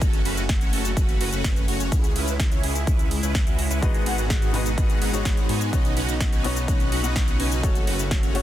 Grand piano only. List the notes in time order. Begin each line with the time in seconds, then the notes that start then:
3.81 G#2 G#3 D#4 F#4 B4
4.53 G#2 G#3 D#4 F#4 B4
5.12 G#2 G#3 D#4 F#4 C#5
5.72 B2 B3 D#4 F#4 C#5
6.43 B2 B3 D#4 F#4 C#5
7.03 B2 B3 D#4 F#4 D#5
7.62 A3 C#4 F#4 C#5
8.34 A3 C#4 F#4 C#5